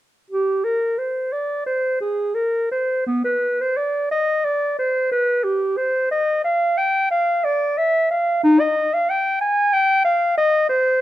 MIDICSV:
0, 0, Header, 1, 2, 480
1, 0, Start_track
1, 0, Key_signature, -3, "minor"
1, 0, Tempo, 688863
1, 215, Time_signature, 4, 2, 24, 8
1, 3095, Tempo, 664452
1, 6455, Tempo, 645161
1, 7888, End_track
2, 0, Start_track
2, 0, Title_t, "Clarinet"
2, 0, Program_c, 0, 71
2, 210, Note_on_c, 0, 67, 71
2, 449, Note_on_c, 0, 70, 68
2, 459, Note_off_c, 0, 67, 0
2, 685, Note_on_c, 0, 72, 60
2, 696, Note_off_c, 0, 70, 0
2, 923, Note_on_c, 0, 74, 77
2, 933, Note_off_c, 0, 72, 0
2, 1153, Note_off_c, 0, 74, 0
2, 1157, Note_on_c, 0, 72, 73
2, 1393, Note_off_c, 0, 72, 0
2, 1399, Note_on_c, 0, 68, 71
2, 1634, Note_on_c, 0, 70, 70
2, 1644, Note_off_c, 0, 68, 0
2, 1881, Note_off_c, 0, 70, 0
2, 1890, Note_on_c, 0, 72, 64
2, 2131, Note_off_c, 0, 72, 0
2, 2135, Note_on_c, 0, 59, 75
2, 2254, Note_off_c, 0, 59, 0
2, 2258, Note_on_c, 0, 71, 67
2, 2515, Note_on_c, 0, 72, 66
2, 2526, Note_off_c, 0, 71, 0
2, 2625, Note_on_c, 0, 74, 71
2, 2636, Note_off_c, 0, 72, 0
2, 2858, Note_off_c, 0, 74, 0
2, 2862, Note_on_c, 0, 75, 79
2, 3100, Note_on_c, 0, 74, 75
2, 3111, Note_off_c, 0, 75, 0
2, 3338, Note_off_c, 0, 74, 0
2, 3342, Note_on_c, 0, 72, 70
2, 3576, Note_off_c, 0, 72, 0
2, 3582, Note_on_c, 0, 71, 75
2, 3815, Note_on_c, 0, 67, 68
2, 3826, Note_off_c, 0, 71, 0
2, 4053, Note_on_c, 0, 72, 82
2, 4063, Note_off_c, 0, 67, 0
2, 4295, Note_off_c, 0, 72, 0
2, 4300, Note_on_c, 0, 75, 77
2, 4537, Note_off_c, 0, 75, 0
2, 4541, Note_on_c, 0, 77, 75
2, 4780, Note_on_c, 0, 79, 77
2, 4791, Note_off_c, 0, 77, 0
2, 5016, Note_off_c, 0, 79, 0
2, 5021, Note_on_c, 0, 77, 86
2, 5261, Note_on_c, 0, 74, 78
2, 5272, Note_off_c, 0, 77, 0
2, 5505, Note_on_c, 0, 76, 81
2, 5516, Note_off_c, 0, 74, 0
2, 5738, Note_off_c, 0, 76, 0
2, 5742, Note_on_c, 0, 77, 73
2, 5974, Note_off_c, 0, 77, 0
2, 5978, Note_on_c, 0, 63, 102
2, 6098, Note_on_c, 0, 75, 87
2, 6109, Note_off_c, 0, 63, 0
2, 6341, Note_on_c, 0, 77, 77
2, 6351, Note_off_c, 0, 75, 0
2, 6459, Note_on_c, 0, 79, 72
2, 6470, Note_off_c, 0, 77, 0
2, 6685, Note_off_c, 0, 79, 0
2, 6690, Note_on_c, 0, 80, 85
2, 6930, Note_on_c, 0, 79, 97
2, 6941, Note_off_c, 0, 80, 0
2, 7157, Note_off_c, 0, 79, 0
2, 7162, Note_on_c, 0, 77, 90
2, 7399, Note_off_c, 0, 77, 0
2, 7409, Note_on_c, 0, 75, 94
2, 7639, Note_off_c, 0, 75, 0
2, 7643, Note_on_c, 0, 72, 84
2, 7883, Note_off_c, 0, 72, 0
2, 7888, End_track
0, 0, End_of_file